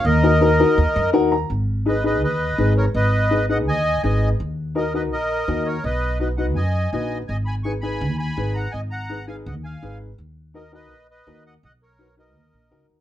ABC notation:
X:1
M:4/4
L:1/16
Q:1/4=166
K:Abdor
V:1 name="Accordion"
[Be]12 z4 | z4 [ce]2 [ce]2 [ce]6 [Bd]2 | [ce]6 [eg]2 [ea]4 [ea]3 z | z4 [Be]2 [ce]2 [Be]6 [Bd]2 |
[ce]4 [ce]2 [eg]2 [ea]4 [ea]3 z | [ea]2 [ac']2 [ad']2 [ac']4 [ac']4 [gb]2 | [ea]2 [gb]4 [fa]2 [eg]2 [fa]4 z2 | z4 [Be]2 [ce]4 [ce]4 [eg]2 |
[^d^f]2 [B_d]4 [B^d]8 z2 |]
V:2 name="Upright piano"
z2 [EGB]2 [EGB]2 [EGB]2 z2 e2 [EGBg]2 b2 | z4 [EAc]2 [EAc]2 z4 [EAc]2 z2 | z4 [EAc]2 [EAc]2 z4 [EAc]2 z2 | z4 [EGB]2 [EGB]2 z4 [EGB]2 z2 |
z4 [EGc]2 [EGc]2 z4 [EGc]2 z2 | z4 [EAc]2 [EAc]2 z4 [EAc]2 z2 | z4 [EAc]2 [EAc]2 z4 [EAc]2 z2 | z4 [EGB]2 [EGB]2 z4 [EGB]2 z2 |
z4 [^D^F=B]2 [DFB]2 z4 [EG_B]2 z2 |]
V:3 name="Upright bass" clef=bass
E,,8 E,, z G,,2 E,,4 | A,,,8 E,,4 A,,,4 | A,,,8 E,,4 A,,,4 | E,,8 B,,,4 E,,4 |
C,,8 G,,4 B,,,4 | A,,,8 E,,4 A,,,4 | A,,,8 E,,4 A,,,4 | E,,8 B,,,4 E,,4 |
=B,,,8 E,,2 _B,,,2 D,,2 E,,2 |]